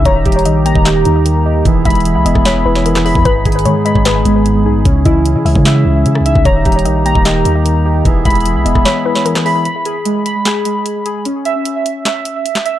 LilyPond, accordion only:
<<
  \new Staff \with { instrumentName = "Accordion" } { \time 4/4 \key gis \minor \tempo 4 = 150 << { dis'1 | <e' e''>1 | dis'1 | e'1 |
dis'1 | <e' e''>1 | r1 | r1 | } \\ { g'1 | gis'1~ | gis'1~ | gis'1 |
g'1 | gis'1 | r1 | r1 | } >> }
  \new Staff \with { instrumentName = "Accordion" } { \time 4/4 \key gis \minor ais1 | b1~ | b1 | cis'1 |
ais1 | b1 | r1 | r1 | }
>>